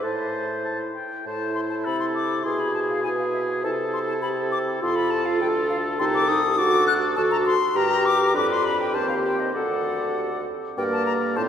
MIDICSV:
0, 0, Header, 1, 6, 480
1, 0, Start_track
1, 0, Key_signature, 0, "minor"
1, 0, Tempo, 601805
1, 31, Time_signature, 2, 2, 24, 8
1, 2430, Tempo, 588813
1, 4841, Key_signature, -2, "minor"
1, 6750, Tempo, 606061
1, 9236, End_track
2, 0, Start_track
2, 0, Title_t, "Flute"
2, 0, Program_c, 0, 73
2, 29, Note_on_c, 0, 84, 43
2, 761, Note_off_c, 0, 84, 0
2, 996, Note_on_c, 0, 81, 79
2, 1222, Note_off_c, 0, 81, 0
2, 1235, Note_on_c, 0, 84, 72
2, 1283, Note_off_c, 0, 84, 0
2, 1351, Note_on_c, 0, 81, 76
2, 1399, Note_off_c, 0, 81, 0
2, 1473, Note_on_c, 0, 83, 92
2, 1590, Note_off_c, 0, 83, 0
2, 1595, Note_on_c, 0, 84, 80
2, 1642, Note_off_c, 0, 84, 0
2, 1709, Note_on_c, 0, 86, 85
2, 1942, Note_on_c, 0, 84, 74
2, 1953, Note_off_c, 0, 86, 0
2, 2069, Note_on_c, 0, 83, 80
2, 2081, Note_off_c, 0, 84, 0
2, 2182, Note_off_c, 0, 83, 0
2, 2187, Note_on_c, 0, 81, 75
2, 2235, Note_off_c, 0, 81, 0
2, 2307, Note_on_c, 0, 77, 79
2, 2414, Note_off_c, 0, 77, 0
2, 2419, Note_on_c, 0, 80, 91
2, 2467, Note_off_c, 0, 80, 0
2, 2549, Note_on_c, 0, 77, 74
2, 2598, Note_off_c, 0, 77, 0
2, 2665, Note_on_c, 0, 76, 72
2, 2720, Note_off_c, 0, 76, 0
2, 2912, Note_on_c, 0, 81, 84
2, 2967, Note_off_c, 0, 81, 0
2, 3153, Note_on_c, 0, 84, 82
2, 3201, Note_off_c, 0, 84, 0
2, 3267, Note_on_c, 0, 81, 88
2, 3316, Note_off_c, 0, 81, 0
2, 3385, Note_on_c, 0, 83, 96
2, 3441, Note_off_c, 0, 83, 0
2, 3631, Note_on_c, 0, 86, 99
2, 3686, Note_off_c, 0, 86, 0
2, 3880, Note_on_c, 0, 84, 89
2, 3988, Note_on_c, 0, 83, 101
2, 4000, Note_off_c, 0, 84, 0
2, 4108, Note_on_c, 0, 81, 98
2, 4120, Note_off_c, 0, 83, 0
2, 4230, Note_on_c, 0, 77, 90
2, 4242, Note_off_c, 0, 81, 0
2, 4351, Note_off_c, 0, 77, 0
2, 4356, Note_on_c, 0, 79, 103
2, 4411, Note_off_c, 0, 79, 0
2, 4593, Note_on_c, 0, 77, 96
2, 4648, Note_off_c, 0, 77, 0
2, 4830, Note_on_c, 0, 84, 105
2, 4879, Note_off_c, 0, 84, 0
2, 4955, Note_on_c, 0, 86, 110
2, 5068, Note_on_c, 0, 87, 108
2, 5080, Note_off_c, 0, 86, 0
2, 5312, Note_on_c, 0, 86, 124
2, 5324, Note_off_c, 0, 87, 0
2, 5544, Note_off_c, 0, 86, 0
2, 5549, Note_on_c, 0, 90, 111
2, 5603, Note_off_c, 0, 90, 0
2, 5783, Note_on_c, 0, 81, 109
2, 5831, Note_off_c, 0, 81, 0
2, 5905, Note_on_c, 0, 82, 114
2, 5954, Note_off_c, 0, 82, 0
2, 6028, Note_on_c, 0, 84, 115
2, 6274, Note_on_c, 0, 82, 126
2, 6287, Note_off_c, 0, 84, 0
2, 6512, Note_on_c, 0, 86, 119
2, 6524, Note_off_c, 0, 82, 0
2, 6753, Note_off_c, 0, 86, 0
2, 6764, Note_on_c, 0, 86, 106
2, 6873, Note_off_c, 0, 86, 0
2, 6881, Note_on_c, 0, 84, 104
2, 6992, Note_on_c, 0, 83, 101
2, 7004, Note_off_c, 0, 84, 0
2, 7105, Note_off_c, 0, 83, 0
2, 7110, Note_on_c, 0, 79, 92
2, 7222, Note_on_c, 0, 81, 97
2, 7234, Note_off_c, 0, 79, 0
2, 7334, Note_off_c, 0, 81, 0
2, 7338, Note_on_c, 0, 77, 90
2, 7386, Note_off_c, 0, 77, 0
2, 7457, Note_on_c, 0, 79, 81
2, 7581, Note_on_c, 0, 75, 73
2, 7593, Note_off_c, 0, 79, 0
2, 7692, Note_off_c, 0, 75, 0
2, 7697, Note_on_c, 0, 78, 81
2, 8418, Note_off_c, 0, 78, 0
2, 8673, Note_on_c, 0, 79, 100
2, 8721, Note_off_c, 0, 79, 0
2, 8789, Note_on_c, 0, 81, 106
2, 8895, Note_off_c, 0, 81, 0
2, 8900, Note_on_c, 0, 82, 98
2, 8955, Note_off_c, 0, 82, 0
2, 9136, Note_on_c, 0, 81, 106
2, 9184, Note_off_c, 0, 81, 0
2, 9236, End_track
3, 0, Start_track
3, 0, Title_t, "Oboe"
3, 0, Program_c, 1, 68
3, 30, Note_on_c, 1, 81, 47
3, 460, Note_off_c, 1, 81, 0
3, 518, Note_on_c, 1, 81, 52
3, 628, Note_off_c, 1, 81, 0
3, 765, Note_on_c, 1, 79, 51
3, 1000, Note_off_c, 1, 79, 0
3, 1010, Note_on_c, 1, 72, 64
3, 1474, Note_on_c, 1, 69, 56
3, 1486, Note_off_c, 1, 72, 0
3, 1949, Note_off_c, 1, 69, 0
3, 1953, Note_on_c, 1, 68, 59
3, 2420, Note_off_c, 1, 68, 0
3, 2435, Note_on_c, 1, 68, 67
3, 2915, Note_on_c, 1, 69, 65
3, 2927, Note_off_c, 1, 68, 0
3, 3871, Note_off_c, 1, 69, 0
3, 3875, Note_on_c, 1, 69, 77
3, 4820, Note_off_c, 1, 69, 0
3, 4842, Note_on_c, 1, 69, 91
3, 5307, Note_off_c, 1, 69, 0
3, 5311, Note_on_c, 1, 69, 77
3, 5781, Note_off_c, 1, 69, 0
3, 5790, Note_on_c, 1, 69, 87
3, 6095, Note_off_c, 1, 69, 0
3, 6273, Note_on_c, 1, 70, 80
3, 6749, Note_on_c, 1, 71, 87
3, 6761, Note_off_c, 1, 70, 0
3, 7232, Note_on_c, 1, 72, 70
3, 7244, Note_off_c, 1, 71, 0
3, 7691, Note_off_c, 1, 72, 0
3, 7695, Note_on_c, 1, 74, 68
3, 8417, Note_off_c, 1, 74, 0
3, 8675, Note_on_c, 1, 74, 74
3, 9144, Note_on_c, 1, 72, 84
3, 9155, Note_off_c, 1, 74, 0
3, 9236, Note_off_c, 1, 72, 0
3, 9236, End_track
4, 0, Start_track
4, 0, Title_t, "French horn"
4, 0, Program_c, 2, 60
4, 34, Note_on_c, 2, 64, 55
4, 749, Note_off_c, 2, 64, 0
4, 1000, Note_on_c, 2, 64, 76
4, 1921, Note_off_c, 2, 64, 0
4, 1955, Note_on_c, 2, 68, 79
4, 2421, Note_off_c, 2, 68, 0
4, 2429, Note_on_c, 2, 71, 75
4, 2903, Note_off_c, 2, 71, 0
4, 2915, Note_on_c, 2, 69, 85
4, 3387, Note_off_c, 2, 69, 0
4, 3393, Note_on_c, 2, 67, 78
4, 3867, Note_off_c, 2, 67, 0
4, 3881, Note_on_c, 2, 65, 85
4, 4360, Note_on_c, 2, 69, 89
4, 4373, Note_off_c, 2, 65, 0
4, 4832, Note_off_c, 2, 69, 0
4, 4837, Note_on_c, 2, 67, 101
4, 5305, Note_off_c, 2, 67, 0
4, 5319, Note_on_c, 2, 66, 94
4, 5658, Note_off_c, 2, 66, 0
4, 5796, Note_on_c, 2, 69, 106
4, 6098, Note_off_c, 2, 69, 0
4, 6274, Note_on_c, 2, 67, 95
4, 6755, Note_on_c, 2, 62, 97
4, 6767, Note_off_c, 2, 67, 0
4, 7225, Note_off_c, 2, 62, 0
4, 7229, Note_on_c, 2, 60, 77
4, 7699, Note_off_c, 2, 60, 0
4, 7711, Note_on_c, 2, 69, 78
4, 8425, Note_off_c, 2, 69, 0
4, 8682, Note_on_c, 2, 58, 81
4, 9154, Note_on_c, 2, 60, 84
4, 9166, Note_off_c, 2, 58, 0
4, 9236, Note_off_c, 2, 60, 0
4, 9236, End_track
5, 0, Start_track
5, 0, Title_t, "Clarinet"
5, 0, Program_c, 3, 71
5, 29, Note_on_c, 3, 72, 71
5, 746, Note_off_c, 3, 72, 0
5, 997, Note_on_c, 3, 64, 67
5, 1919, Note_off_c, 3, 64, 0
5, 1948, Note_on_c, 3, 64, 63
5, 2417, Note_off_c, 3, 64, 0
5, 2431, Note_on_c, 3, 64, 70
5, 2904, Note_off_c, 3, 64, 0
5, 2922, Note_on_c, 3, 64, 73
5, 3878, Note_on_c, 3, 65, 82
5, 3890, Note_off_c, 3, 64, 0
5, 4832, Note_off_c, 3, 65, 0
5, 4837, Note_on_c, 3, 63, 84
5, 5069, Note_off_c, 3, 63, 0
5, 5074, Note_on_c, 3, 63, 84
5, 5182, Note_off_c, 3, 63, 0
5, 5312, Note_on_c, 3, 66, 98
5, 5781, Note_off_c, 3, 66, 0
5, 5791, Note_on_c, 3, 66, 83
5, 6095, Note_off_c, 3, 66, 0
5, 6264, Note_on_c, 3, 67, 91
5, 6716, Note_off_c, 3, 67, 0
5, 6748, Note_on_c, 3, 67, 89
5, 7213, Note_off_c, 3, 67, 0
5, 7229, Note_on_c, 3, 67, 79
5, 7705, Note_on_c, 3, 69, 65
5, 7717, Note_off_c, 3, 67, 0
5, 8437, Note_off_c, 3, 69, 0
5, 8671, Note_on_c, 3, 70, 79
5, 9142, Note_on_c, 3, 65, 86
5, 9154, Note_off_c, 3, 70, 0
5, 9236, Note_off_c, 3, 65, 0
5, 9236, End_track
6, 0, Start_track
6, 0, Title_t, "Bassoon"
6, 0, Program_c, 4, 70
6, 32, Note_on_c, 4, 45, 54
6, 763, Note_off_c, 4, 45, 0
6, 1006, Note_on_c, 4, 45, 69
6, 1450, Note_off_c, 4, 45, 0
6, 1485, Note_on_c, 4, 48, 61
6, 1948, Note_off_c, 4, 48, 0
6, 1957, Note_on_c, 4, 47, 65
6, 2916, Note_on_c, 4, 48, 76
6, 2929, Note_off_c, 4, 47, 0
6, 3876, Note_off_c, 4, 48, 0
6, 3881, Note_on_c, 4, 41, 84
6, 4363, Note_on_c, 4, 38, 80
6, 4375, Note_off_c, 4, 41, 0
6, 4834, Note_off_c, 4, 38, 0
6, 4839, Note_on_c, 4, 36, 89
6, 5320, Note_on_c, 4, 38, 91
6, 5333, Note_off_c, 4, 36, 0
6, 5791, Note_off_c, 4, 38, 0
6, 5796, Note_on_c, 4, 38, 89
6, 6098, Note_off_c, 4, 38, 0
6, 6268, Note_on_c, 4, 43, 93
6, 6752, Note_on_c, 4, 41, 88
6, 6764, Note_off_c, 4, 43, 0
6, 7225, Note_on_c, 4, 39, 81
6, 7237, Note_off_c, 4, 41, 0
6, 7704, Note_off_c, 4, 39, 0
6, 7708, Note_on_c, 4, 38, 72
6, 8424, Note_off_c, 4, 38, 0
6, 8675, Note_on_c, 4, 43, 91
6, 9151, Note_on_c, 4, 45, 92
6, 9163, Note_off_c, 4, 43, 0
6, 9236, Note_off_c, 4, 45, 0
6, 9236, End_track
0, 0, End_of_file